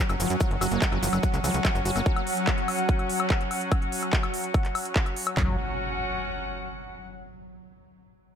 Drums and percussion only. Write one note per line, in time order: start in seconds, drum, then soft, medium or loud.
0.09 closed hi-hat soft
0.09 high woodblock medium
0.09 maracas soft
0.20 open hi-hat loud
0.20 maracas medium
0.30 closed hi-hat medium
0.30 maracas soft
0.40 kick loud
0.40 closed hi-hat medium
0.40 high woodblock soft
0.40 maracas medium
0.51 closed hi-hat soft
0.61 open hi-hat loud
0.61 high woodblock medium
0.61 maracas medium
0.71 closed hi-hat medium
0.71 maracas soft
0.82 kick loud
0.82 clap loud
0.82 closed hi-hat medium
0.82 maracas medium
0.92 closed hi-hat soft
0.92 high woodblock soft
1.03 open hi-hat loud
1.03 maracas loud
1.13 closed hi-hat medium
1.13 high woodblock medium
1.13 maracas soft
1.23 kick loud
1.23 closed hi-hat medium
1.23 maracas medium
1.34 clap soft
1.34 closed hi-hat soft
1.34 maracas soft
1.44 open hi-hat loud
1.44 high woodblock soft
1.44 maracas loud
1.54 closed hi-hat medium
1.54 maracas soft
1.65 kick loud
1.65 clap loud
1.65 closed hi-hat medium
1.65 high woodblock medium
1.65 maracas medium
1.75 closed hi-hat soft
1.75 maracas soft
1.85 open hi-hat loud
1.85 maracas loud
1.96 closed hi-hat medium
1.96 high woodblock soft
1.96 maracas soft
2.06 kick loud
2.06 closed hi-hat medium
2.16 closed hi-hat soft
2.16 high woodblock medium
2.27 open hi-hat loud
2.37 closed hi-hat medium
2.47 kick loud
2.47 clap loud
2.47 closed hi-hat medium
2.47 high woodblock soft
2.58 closed hi-hat soft
2.68 open hi-hat loud
2.68 high woodblock medium
2.79 closed hi-hat medium
2.89 kick loud
2.89 closed hi-hat medium
2.99 closed hi-hat soft
2.99 high woodblock soft
3.10 open hi-hat loud
3.20 closed hi-hat medium
3.20 high woodblock medium
3.30 kick loud
3.30 clap loud
3.30 closed hi-hat medium
3.41 closed hi-hat soft
3.51 open hi-hat loud
3.51 high woodblock soft
3.61 closed hi-hat medium
3.72 kick loud
3.72 closed hi-hat soft
3.72 high woodblock medium
3.82 closed hi-hat soft
3.92 open hi-hat loud
4.03 closed hi-hat medium
4.03 high woodblock soft
4.13 kick loud
4.13 clap loud
4.13 closed hi-hat medium
4.23 closed hi-hat soft
4.23 high woodblock medium
4.34 open hi-hat loud
4.44 closed hi-hat medium
4.54 kick loud
4.54 closed hi-hat medium
4.54 high woodblock soft
4.65 clap soft
4.65 closed hi-hat soft
4.75 open hi-hat loud
4.75 high woodblock medium
4.85 closed hi-hat medium
4.96 kick loud
4.96 clap loud
4.96 closed hi-hat soft
5.06 closed hi-hat soft
5.06 high woodblock soft
5.16 open hi-hat loud
5.27 closed hi-hat medium
5.27 high woodblock medium
5.37 kick loud
5.37 clap medium
5.37 floor tom loud